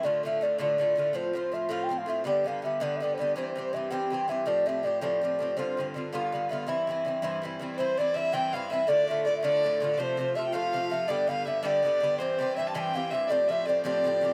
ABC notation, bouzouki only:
X:1
M:6/8
L:1/8
Q:3/8=109
K:C
V:1 name="Bouzouki" clef=bass
[A,,D,A,F] [A,,D,A,F] [A,,D,A,F] [A,,D,A,F] [A,,D,A,F] [A,,D,A,F] | [A,,F,CF] [A,,F,CF] [A,,F,CF] [A,,F,CF] [A,,F,CF] [A,,F,CF] | [G,,D,B,G] [G,,D,B,G] [G,,D,B,G] [G,,D,B,G] [G,,D,B,G] [G,,D,B,G] | [G,,E,CG] [G,,E,CG] [G,,E,CG] [G,,E,CG] [G,,E,CG] [G,,E,CG] |
[A,,F,CG] [A,,F,CG] [A,,F,CG] [A,,F,CG] [A,,F,CG] [A,,F,CG] | [G,,D,CF] [G,,D,CF] [G,,D,CF] [G,,D,B,F] [G,,D,B,F] [G,,D,B,F] | [G,,E,CE] [G,,E,CE] [G,,E,CE] [G,,E,CE] [G,,E,CE] [G,,E,CE] | [G,,E,CE] [G,,E,CE] [G,,E,CE] [G,,E,CE] [G,,E,CE] [G,,E,CE] |
[A,,D,A,F] [A,,D,A,F] [A,,D,A,F] [A,,D,A,F] [A,,D,A,F] [A,,D,A,F] | [C,F,A,F] [C,F,A,F] [C,F,A,F] [C,F,A,F] [C,F,A,F] [C,F,A,F] | [G,,D,B,G] [G,,D,B,G] [G,,D,B,G] [G,,D,B,G] [G,,D,B,G] [G,,D,B,G] | [G,,E,CG] [G,,E,CG] [G,,E,CG] [G,,E,CG] [G,,E,CG] [G,,E,CG] |
[A,,F,CG] [A,,F,CG] [A,,F,CG] [A,,F,CG] [A,,F,CG] [A,,F,CG] |]